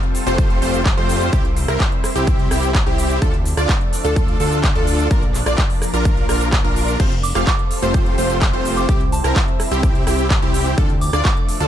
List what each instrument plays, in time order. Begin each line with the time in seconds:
Already playing: analog synth pad G3 C4 F4 A4 C5
0.03 closed hi-hat
0.15 open hi-hat, shaker
0.27 analog synth bass F1, supersaw synth A3 C4 F4 G4 C5, digital synth lead C5, closed hi-hat, shaker
0.38 kick, closed hi-hat, shaker
0.50 closed hi-hat
0.62 analog synth bass F1, supersaw synth A3 C4 F4 G4 C5, digital synth lead C5, open hi-hat, shaker
0.74 closed hi-hat, shaker
0.86 kick, clap, closed hi-hat, shaker
0.97 analog synth bass F2, supersaw synth A3 C4 F4 G4 C5, digital synth lead C5, closed hi-hat
1.09 open hi-hat, shaker
1.21 closed hi-hat, shaker
1.33 supersaw synth C4 E4 G4, analog synth pad E4 E5, digital synth lead G4, kick, closed hi-hat, shaker
1.45 closed hi-hat
1.57 open hi-hat, shaker
1.68 analog synth bass C2, supersaw synth C4 E4 A#4, digital synth lead A#4, cross-stick, closed hi-hat, shaker
1.80 kick, clap, closed hi-hat, shaker
1.92 closed hi-hat
2.04 cross-stick, open hi-hat, shaker
2.15 analog synth bass C2, supersaw synth C4 E4 G4, digital synth lead G4, closed hi-hat, shaker
2.27 kick, closed hi-hat, shaker
2.39 closed hi-hat
2.51 analog synth bass C2, supersaw synth C4 E4 G4, digital synth lead G4, cross-stick, open hi-hat, shaker
2.63 closed hi-hat, shaker
2.75 kick, clap, closed hi-hat, shaker
2.86 analog synth bass C2, supersaw synth C4 E4 G4, digital synth lead G4, closed hi-hat
2.98 open hi-hat, shaker
3.10 closed hi-hat, shaker
3.22 analog synth bass D2, analog synth pad F3 A3 D4 A4 D5, supersaw synth D4 F4 A4, digital synth lead A4, kick, closed hi-hat, shaker
3.34 closed hi-hat
3.46 open hi-hat, shaker
3.57 analog synth bass D2, supersaw synth D4 F4 D5, digital synth lead D5, cross-stick, closed hi-hat, shaker
3.69 kick, clap, closed hi-hat, shaker
3.81 closed hi-hat
3.93 open hi-hat, shaker
4.05 analog synth bass D2, supersaw synth D4 F4 A4, digital synth lead A4, closed hi-hat, shaker
4.16 kick, closed hi-hat, shaker
4.28 closed hi-hat
4.40 analog synth bass D2, supersaw synth D4 F4 A4, digital synth lead A4, open hi-hat, shaker
4.52 closed hi-hat, shaker
4.64 kick, clap, closed hi-hat, shaker
4.75 analog synth bass D2, supersaw synth D4 F4 A4, digital synth lead A4, closed hi-hat
4.87 open hi-hat, shaker
4.99 closed hi-hat, shaker
5.11 analog synth pad A#3 A#4, supersaw synth D4 F4 A#4, digital synth lead A#4, kick, closed hi-hat, shaker
5.23 closed hi-hat
5.34 clap, open hi-hat, shaker
5.46 analog synth bass A#1, supersaw synth D4 F4 D5, digital synth lead D5, cross-stick, closed hi-hat, shaker
5.58 kick, clap, closed hi-hat, shaker
5.70 open hi-hat
5.82 cross-stick, open hi-hat, shaker
5.93 analog synth bass A#1, supersaw synth D4 F4 A#4, digital synth lead A#4, closed hi-hat, shaker
6.05 kick, closed hi-hat, shaker
6.17 closed hi-hat
6.29 analog synth bass A#1, supersaw synth D4 F4 A#4, digital synth lead A#4, cross-stick, open hi-hat, shaker
6.41 closed hi-hat, shaker
6.53 kick, clap, closed hi-hat, shaker
6.64 analog synth bass A#1, supersaw synth D4 F4 A#4, digital synth lead A#4, closed hi-hat
6.76 open hi-hat, shaker
6.88 closed hi-hat, shaker
7.00 analog synth pad G3 C4 F4 A4 C5, supersaw synth A3 C4 F4 G4 C5, digital synth lead C5, kick, closed hi-hat, crash, shaker
7.12 closed hi-hat
7.23 synth bell D6, open hi-hat, shaker
7.35 analog synth bass F1, supersaw synth A3 C4 F4 G4 F5, digital synth lead F5, synth bell D6, cross-stick, closed hi-hat, shaker
7.47 synth bell D6, kick, clap, closed hi-hat, shaker
7.59 closed hi-hat
7.71 open hi-hat, shaker
7.82 analog synth bass F1, supersaw synth A3 C4 F4 G4 C5, digital synth lead C5, closed hi-hat, shaker
7.94 kick, closed hi-hat, shaker
8.06 closed hi-hat
8.18 analog synth bass F1, supersaw synth A3 C4 F4 G4 C5, digital synth lead C5, open hi-hat, shaker
8.30 closed hi-hat, shaker
8.42 kick, clap, closed hi-hat, shaker
8.53 analog synth bass F1, supersaw synth A3 C4 F4 G4 C5, digital synth lead C5, closed hi-hat
8.65 open hi-hat, shaker
8.77 synth bell D6, closed hi-hat, shaker
8.89 analog synth bass C2, analog synth pad G3 E4 E5, supersaw synth C4 E4 G4, digital synth lead G4, kick, closed hi-hat, shaker
9.01 closed hi-hat
9.12 synth bell A5, open hi-hat, shaker
9.24 analog synth bass C2, supersaw synth C4 E4 A#4, digital synth lead A#4, synth bell A5, cross-stick, closed hi-hat, shaker
9.36 kick, clap, closed hi-hat, shaker
9.48 closed hi-hat
9.60 cross-stick, open hi-hat, shaker
9.71 analog synth bass C2, supersaw synth C4 E4 G4, digital synth lead G4, closed hi-hat, shaker
9.83 kick, closed hi-hat, shaker
9.95 closed hi-hat
10.07 analog synth bass C2, supersaw synth C4 E4 G4, digital synth lead G4, cross-stick, open hi-hat, shaker
10.19 closed hi-hat, shaker
10.30 kick, clap, closed hi-hat, shaker
10.42 analog synth bass C2, supersaw synth C4 E4 G4, digital synth lead G4, closed hi-hat
10.54 open hi-hat, shaker
10.66 closed hi-hat, shaker
10.78 analog synth bass D2, analog synth pad F3 A3 D4 A4 D5, supersaw synth D4 F4 A4, digital synth lead A4, kick, closed hi-hat, shaker
10.90 closed hi-hat
11.01 synth bell D6, open hi-hat, shaker
11.13 analog synth bass D2, supersaw synth D4 F4 D5, digital synth lead D5, synth bell D6, cross-stick, closed hi-hat, shaker
11.25 synth bell D6, kick, clap, closed hi-hat, shaker
11.37 closed hi-hat
11.49 open hi-hat, shaker
11.60 analog synth bass D2, supersaw synth D4 F4 A4, digital synth lead A4, closed hi-hat, shaker